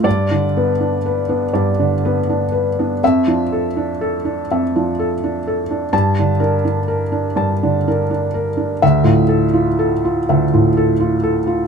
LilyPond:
<<
  \new Staff \with { instrumentName = "Felt piano" } { \time 4/4 \key g \dorian \tempo 4 = 82 << { d''8 r2. r8 | e''8 r2. r8 | a''8 r2. r8 | e''8 r2. r8 | } \\ { \tuplet 3/2 { r8 d'8 b'8 d'8 b'8 d'8 d''8 d'8 b'8 d'8 b'8 d'8 } | \tuplet 3/2 { r8 d'8 a'8 d'8 a'8 d'8 e''8 d'8 a'8 d'8 a'8 d'8 } | \tuplet 3/2 { r8 d'8 bes'8 d'8 bes'8 d'8 a''8 d'8 bes'8 d'8 bes'4 } | \tuplet 3/2 { r8 f'8 a'8 f'8 a'8 f'8 e''8 f'8 a'8 f'8 a'8 f'8 } | } >> }
  \new Staff \with { instrumentName = "Felt piano" } { \clef bass \time 4/4 \key g \dorian \tuplet 3/2 { g,8 d8 b8~ b8 r8 b8 g,8 d8 b8~ b8 r8 b8 } | \tuplet 3/2 { f,8 f4 } r4 \tuplet 3/2 { f,8 f4 } r4 | \tuplet 3/2 { g,8 d8 d'8 } r4 \tuplet 3/2 { g,8 d8 d'8~ d'8 r8 d'8 } | \tuplet 3/2 { d,8 a,4 } r4 \tuplet 3/2 { d,8 a,4 } r4 | }
>>